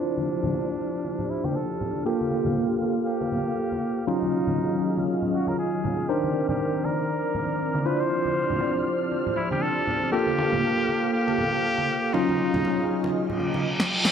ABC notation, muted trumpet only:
X:1
M:4/4
L:1/16
Q:"Swing 16ths" 1/4=119
K:Dphr
V:1 name="Muted trumpet"
D8- D2 =E G A4 | G6 z2 G8 | E8 z2 _G B _A4 | G3 G3 B8 =B c- |
c6- c z3 =E G A4 | G8 G8 | E8 z8 |]